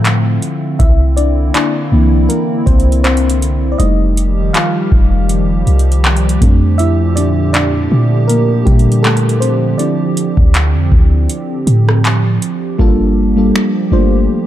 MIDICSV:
0, 0, Header, 1, 5, 480
1, 0, Start_track
1, 0, Key_signature, -1, "minor"
1, 0, Tempo, 750000
1, 508, Time_signature, 4, 2, 24, 8
1, 9260, End_track
2, 0, Start_track
2, 0, Title_t, "FM electric piano"
2, 0, Program_c, 0, 5
2, 0, Control_c, 0, 64, 127
2, 0, Note_on_c, 0, 53, 59
2, 0, Note_on_c, 0, 60, 51
2, 0, Note_on_c, 0, 62, 59
2, 0, Note_on_c, 0, 65, 71
2, 0, Note_on_c, 0, 77, 93
2, 506, Note_on_c, 0, 76, 92
2, 515, Control_c, 0, 64, 0
2, 516, Note_off_c, 0, 77, 0
2, 516, Note_on_c, 0, 64, 74
2, 517, Note_off_c, 0, 62, 0
2, 520, Note_off_c, 0, 53, 0
2, 521, Note_off_c, 0, 65, 0
2, 522, Note_off_c, 0, 60, 0
2, 618, Control_c, 0, 64, 127
2, 730, Note_off_c, 0, 76, 0
2, 735, Note_off_c, 0, 64, 0
2, 746, Note_on_c, 0, 74, 88
2, 756, Note_on_c, 0, 62, 67
2, 970, Note_off_c, 0, 74, 0
2, 975, Note_off_c, 0, 62, 0
2, 986, Note_on_c, 0, 74, 89
2, 997, Note_on_c, 0, 62, 69
2, 1226, Note_on_c, 0, 52, 59
2, 1227, Note_off_c, 0, 62, 0
2, 1231, Note_on_c, 0, 58, 54
2, 1235, Note_on_c, 0, 62, 64
2, 1464, Note_on_c, 0, 70, 89
2, 1468, Note_off_c, 0, 58, 0
2, 1476, Note_on_c, 0, 58, 65
2, 1482, Note_off_c, 0, 74, 0
2, 1696, Note_off_c, 0, 58, 0
2, 1703, Note_on_c, 0, 72, 87
2, 1713, Note_off_c, 0, 70, 0
2, 1717, Note_on_c, 0, 60, 71
2, 1935, Note_off_c, 0, 72, 0
2, 1936, Note_off_c, 0, 60, 0
2, 1943, Note_on_c, 0, 72, 95
2, 1956, Note_on_c, 0, 60, 76
2, 2365, Note_off_c, 0, 60, 0
2, 2380, Note_on_c, 0, 74, 74
2, 2398, Note_off_c, 0, 72, 0
2, 2402, Note_off_c, 0, 52, 0
2, 2406, Note_off_c, 0, 62, 0
2, 2422, Note_on_c, 0, 75, 101
2, 2425, Note_off_c, 0, 74, 0
2, 2428, Note_on_c, 0, 55, 60
2, 2431, Note_on_c, 0, 57, 53
2, 2434, Note_on_c, 0, 63, 66
2, 2436, Note_off_c, 0, 63, 0
2, 2436, Note_on_c, 0, 63, 84
2, 2437, Control_c, 0, 64, 0
2, 2562, Control_c, 0, 64, 127
2, 2754, Note_off_c, 0, 55, 0
2, 2756, Note_off_c, 0, 57, 0
2, 2879, Note_off_c, 0, 75, 0
2, 2887, Note_off_c, 0, 63, 0
2, 2901, Note_on_c, 0, 77, 99
2, 2916, Note_on_c, 0, 65, 72
2, 3599, Note_off_c, 0, 77, 0
2, 3606, Note_off_c, 0, 65, 0
2, 4104, Note_on_c, 0, 57, 62
2, 4108, Note_on_c, 0, 60, 53
2, 4112, Note_on_c, 0, 62, 62
2, 4117, Control_c, 0, 64, 0
2, 4226, Control_c, 0, 64, 127
2, 4339, Note_on_c, 0, 76, 114
2, 4352, Note_on_c, 0, 64, 88
2, 4573, Note_off_c, 0, 64, 0
2, 4580, Note_on_c, 0, 74, 93
2, 4586, Note_off_c, 0, 62, 0
2, 4591, Note_off_c, 0, 76, 0
2, 4593, Note_on_c, 0, 62, 76
2, 4801, Note_off_c, 0, 57, 0
2, 4803, Note_off_c, 0, 60, 0
2, 4811, Note_off_c, 0, 74, 0
2, 4814, Note_off_c, 0, 62, 0
2, 4819, Note_on_c, 0, 74, 98
2, 4832, Note_on_c, 0, 62, 82
2, 5278, Note_off_c, 0, 74, 0
2, 5284, Note_off_c, 0, 62, 0
2, 5296, Note_on_c, 0, 70, 93
2, 5310, Note_on_c, 0, 58, 71
2, 5532, Note_off_c, 0, 58, 0
2, 5538, Note_on_c, 0, 67, 87
2, 5550, Note_off_c, 0, 70, 0
2, 5552, Note_on_c, 0, 55, 67
2, 5766, Note_off_c, 0, 67, 0
2, 5773, Note_off_c, 0, 55, 0
2, 5777, Note_on_c, 0, 69, 94
2, 5791, Note_on_c, 0, 57, 67
2, 6013, Note_off_c, 0, 57, 0
2, 6018, Note_on_c, 0, 72, 91
2, 6030, Note_off_c, 0, 69, 0
2, 6032, Note_on_c, 0, 60, 72
2, 6254, Note_off_c, 0, 60, 0
2, 6259, Note_on_c, 0, 74, 90
2, 6264, Note_on_c, 0, 53, 55
2, 6268, Note_on_c, 0, 60, 54
2, 6271, Note_off_c, 0, 72, 0
2, 6272, Note_on_c, 0, 64, 64
2, 6274, Note_on_c, 0, 62, 72
2, 6277, Control_c, 0, 64, 0
2, 6385, Control_c, 0, 64, 127
2, 6718, Note_off_c, 0, 74, 0
2, 6725, Note_off_c, 0, 62, 0
2, 8161, Note_off_c, 0, 53, 0
2, 8163, Note_off_c, 0, 60, 0
2, 8165, Note_off_c, 0, 64, 0
2, 8182, Note_on_c, 0, 55, 106
2, 8186, Note_on_c, 0, 58, 103
2, 8190, Note_on_c, 0, 62, 103
2, 8193, Note_on_c, 0, 65, 102
2, 8195, Control_c, 0, 64, 0
2, 8198, Note_on_c, 0, 69, 120
2, 8296, Control_c, 0, 64, 127
2, 8423, Note_off_c, 0, 55, 0
2, 8425, Note_off_c, 0, 58, 0
2, 8427, Note_off_c, 0, 62, 0
2, 8428, Note_off_c, 0, 65, 0
2, 8431, Note_off_c, 0, 69, 0
2, 8550, Note_on_c, 0, 55, 73
2, 8554, Note_on_c, 0, 58, 69
2, 8558, Note_on_c, 0, 62, 69
2, 8562, Note_on_c, 0, 65, 69
2, 8565, Note_on_c, 0, 69, 85
2, 8791, Note_off_c, 0, 55, 0
2, 8793, Note_off_c, 0, 58, 0
2, 8795, Note_off_c, 0, 62, 0
2, 8797, Note_off_c, 0, 65, 0
2, 8798, Note_off_c, 0, 69, 0
2, 8899, Note_on_c, 0, 55, 89
2, 8902, Note_on_c, 0, 57, 63
2, 8907, Note_on_c, 0, 62, 80
2, 8910, Note_on_c, 0, 65, 74
2, 8915, Note_on_c, 0, 72, 94
2, 8944, Note_on_c, 0, 58, 78
2, 8950, Note_off_c, 0, 57, 0
2, 9260, Note_off_c, 0, 55, 0
2, 9260, Note_off_c, 0, 58, 0
2, 9260, Note_off_c, 0, 62, 0
2, 9260, Note_off_c, 0, 65, 0
2, 9260, Note_off_c, 0, 72, 0
2, 9260, End_track
3, 0, Start_track
3, 0, Title_t, "Analog synth pad"
3, 0, Program_c, 1, 89
3, 0, Note_on_c, 1, 50, 77
3, 0, Note_on_c, 1, 53, 89
3, 0, Note_on_c, 1, 57, 69
3, 0, Note_on_c, 1, 60, 70
3, 489, Note_off_c, 1, 60, 0
3, 490, Note_off_c, 1, 53, 0
3, 490, Note_off_c, 1, 57, 0
3, 508, Note_on_c, 1, 58, 69
3, 508, Note_on_c, 1, 64, 85
3, 510, Note_on_c, 1, 60, 68
3, 2403, Note_off_c, 1, 50, 0
3, 2409, Note_off_c, 1, 58, 0
3, 2409, Note_off_c, 1, 64, 0
3, 2410, Note_off_c, 1, 60, 0
3, 2427, Note_on_c, 1, 55, 67
3, 2427, Note_on_c, 1, 67, 82
3, 2428, Note_on_c, 1, 51, 77
3, 2428, Note_on_c, 1, 53, 71
3, 4091, Note_off_c, 1, 55, 0
3, 4092, Note_off_c, 1, 51, 0
3, 4106, Note_on_c, 1, 50, 78
3, 4107, Note_on_c, 1, 46, 73
3, 6246, Note_off_c, 1, 46, 0
3, 6271, Note_on_c, 1, 60, 68
3, 8161, Note_off_c, 1, 50, 0
3, 8162, Note_off_c, 1, 67, 0
3, 8163, Note_off_c, 1, 53, 0
3, 8170, Note_off_c, 1, 60, 0
3, 8188, Note_on_c, 1, 55, 67
3, 8189, Note_on_c, 1, 53, 71
3, 8189, Note_on_c, 1, 58, 66
3, 8189, Note_on_c, 1, 67, 84
3, 9260, Note_off_c, 1, 53, 0
3, 9260, Note_off_c, 1, 55, 0
3, 9260, Note_off_c, 1, 58, 0
3, 9260, Note_off_c, 1, 67, 0
3, 9260, End_track
4, 0, Start_track
4, 0, Title_t, "808-style bass"
4, 0, Program_c, 2, 38
4, 0, Note_on_c, 2, 45, 102
4, 250, Note_off_c, 2, 45, 0
4, 511, Note_on_c, 2, 36, 116
4, 970, Note_off_c, 2, 36, 0
4, 1230, Note_on_c, 2, 36, 101
4, 1460, Note_off_c, 2, 36, 0
4, 1709, Note_on_c, 2, 36, 109
4, 2403, Note_off_c, 2, 36, 0
4, 2430, Note_on_c, 2, 29, 116
4, 2890, Note_off_c, 2, 29, 0
4, 3149, Note_on_c, 2, 29, 100
4, 3609, Note_off_c, 2, 29, 0
4, 3629, Note_on_c, 2, 36, 103
4, 4089, Note_off_c, 2, 36, 0
4, 4107, Note_on_c, 2, 41, 100
4, 5042, Note_off_c, 2, 41, 0
4, 5067, Note_on_c, 2, 46, 103
4, 5529, Note_off_c, 2, 46, 0
4, 5547, Note_on_c, 2, 46, 111
4, 6242, Note_off_c, 2, 46, 0
4, 6639, Note_on_c, 2, 38, 109
4, 6877, Note_on_c, 2, 41, 99
4, 6887, Note_off_c, 2, 38, 0
4, 6982, Note_off_c, 2, 41, 0
4, 6988, Note_on_c, 2, 38, 98
4, 7218, Note_off_c, 2, 38, 0
4, 7469, Note_on_c, 2, 45, 111
4, 7929, Note_off_c, 2, 45, 0
4, 8189, Note_on_c, 2, 31, 111
4, 8649, Note_off_c, 2, 31, 0
4, 8908, Note_on_c, 2, 31, 99
4, 9138, Note_off_c, 2, 31, 0
4, 9260, End_track
5, 0, Start_track
5, 0, Title_t, "Drums"
5, 32, Note_on_c, 9, 42, 63
5, 36, Note_on_c, 9, 39, 108
5, 96, Note_off_c, 9, 42, 0
5, 100, Note_off_c, 9, 39, 0
5, 271, Note_on_c, 9, 42, 63
5, 335, Note_off_c, 9, 42, 0
5, 510, Note_on_c, 9, 36, 127
5, 511, Note_on_c, 9, 42, 62
5, 574, Note_off_c, 9, 36, 0
5, 575, Note_off_c, 9, 42, 0
5, 751, Note_on_c, 9, 42, 76
5, 815, Note_off_c, 9, 42, 0
5, 988, Note_on_c, 9, 42, 69
5, 996, Note_on_c, 9, 39, 112
5, 1052, Note_off_c, 9, 42, 0
5, 1060, Note_off_c, 9, 39, 0
5, 1470, Note_on_c, 9, 42, 74
5, 1534, Note_off_c, 9, 42, 0
5, 1708, Note_on_c, 9, 36, 94
5, 1709, Note_on_c, 9, 42, 44
5, 1772, Note_off_c, 9, 36, 0
5, 1773, Note_off_c, 9, 42, 0
5, 1790, Note_on_c, 9, 42, 48
5, 1854, Note_off_c, 9, 42, 0
5, 1870, Note_on_c, 9, 42, 53
5, 1934, Note_off_c, 9, 42, 0
5, 1948, Note_on_c, 9, 42, 56
5, 1955, Note_on_c, 9, 39, 116
5, 2012, Note_off_c, 9, 42, 0
5, 2019, Note_off_c, 9, 39, 0
5, 2029, Note_on_c, 9, 42, 62
5, 2093, Note_off_c, 9, 42, 0
5, 2109, Note_on_c, 9, 42, 73
5, 2173, Note_off_c, 9, 42, 0
5, 2191, Note_on_c, 9, 42, 71
5, 2255, Note_off_c, 9, 42, 0
5, 2430, Note_on_c, 9, 42, 61
5, 2494, Note_off_c, 9, 42, 0
5, 2671, Note_on_c, 9, 42, 81
5, 2735, Note_off_c, 9, 42, 0
5, 2908, Note_on_c, 9, 42, 71
5, 2916, Note_on_c, 9, 39, 110
5, 2972, Note_off_c, 9, 42, 0
5, 2980, Note_off_c, 9, 39, 0
5, 3148, Note_on_c, 9, 36, 94
5, 3212, Note_off_c, 9, 36, 0
5, 3388, Note_on_c, 9, 42, 72
5, 3452, Note_off_c, 9, 42, 0
5, 3629, Note_on_c, 9, 42, 43
5, 3693, Note_off_c, 9, 42, 0
5, 3708, Note_on_c, 9, 42, 49
5, 3772, Note_off_c, 9, 42, 0
5, 3787, Note_on_c, 9, 42, 53
5, 3851, Note_off_c, 9, 42, 0
5, 3866, Note_on_c, 9, 42, 57
5, 3873, Note_on_c, 9, 39, 114
5, 3930, Note_off_c, 9, 42, 0
5, 3937, Note_off_c, 9, 39, 0
5, 3946, Note_on_c, 9, 42, 64
5, 4010, Note_off_c, 9, 42, 0
5, 4027, Note_on_c, 9, 42, 72
5, 4091, Note_off_c, 9, 42, 0
5, 4107, Note_on_c, 9, 36, 110
5, 4107, Note_on_c, 9, 42, 67
5, 4171, Note_off_c, 9, 36, 0
5, 4171, Note_off_c, 9, 42, 0
5, 4347, Note_on_c, 9, 42, 58
5, 4411, Note_off_c, 9, 42, 0
5, 4588, Note_on_c, 9, 42, 80
5, 4652, Note_off_c, 9, 42, 0
5, 4826, Note_on_c, 9, 42, 71
5, 4833, Note_on_c, 9, 39, 109
5, 4890, Note_off_c, 9, 42, 0
5, 4897, Note_off_c, 9, 39, 0
5, 5309, Note_on_c, 9, 42, 78
5, 5373, Note_off_c, 9, 42, 0
5, 5546, Note_on_c, 9, 36, 95
5, 5547, Note_on_c, 9, 42, 42
5, 5610, Note_off_c, 9, 36, 0
5, 5611, Note_off_c, 9, 42, 0
5, 5627, Note_on_c, 9, 42, 47
5, 5691, Note_off_c, 9, 42, 0
5, 5707, Note_on_c, 9, 42, 53
5, 5771, Note_off_c, 9, 42, 0
5, 5788, Note_on_c, 9, 42, 58
5, 5795, Note_on_c, 9, 39, 117
5, 5852, Note_off_c, 9, 42, 0
5, 5859, Note_off_c, 9, 39, 0
5, 5868, Note_on_c, 9, 42, 67
5, 5932, Note_off_c, 9, 42, 0
5, 5947, Note_on_c, 9, 42, 70
5, 6011, Note_off_c, 9, 42, 0
5, 6029, Note_on_c, 9, 42, 66
5, 6093, Note_off_c, 9, 42, 0
5, 6268, Note_on_c, 9, 42, 59
5, 6332, Note_off_c, 9, 42, 0
5, 6509, Note_on_c, 9, 42, 78
5, 6573, Note_off_c, 9, 42, 0
5, 6639, Note_on_c, 9, 36, 98
5, 6703, Note_off_c, 9, 36, 0
5, 6746, Note_on_c, 9, 42, 72
5, 6754, Note_on_c, 9, 39, 120
5, 6810, Note_off_c, 9, 42, 0
5, 6818, Note_off_c, 9, 39, 0
5, 6988, Note_on_c, 9, 36, 96
5, 7052, Note_off_c, 9, 36, 0
5, 7229, Note_on_c, 9, 42, 77
5, 7293, Note_off_c, 9, 42, 0
5, 7470, Note_on_c, 9, 42, 67
5, 7534, Note_off_c, 9, 42, 0
5, 7607, Note_on_c, 9, 37, 98
5, 7671, Note_off_c, 9, 37, 0
5, 7710, Note_on_c, 9, 42, 65
5, 7715, Note_on_c, 9, 39, 114
5, 7774, Note_off_c, 9, 42, 0
5, 7779, Note_off_c, 9, 39, 0
5, 7950, Note_on_c, 9, 42, 68
5, 8014, Note_off_c, 9, 42, 0
5, 8188, Note_on_c, 9, 36, 114
5, 8252, Note_off_c, 9, 36, 0
5, 8676, Note_on_c, 9, 26, 107
5, 8740, Note_off_c, 9, 26, 0
5, 9260, End_track
0, 0, End_of_file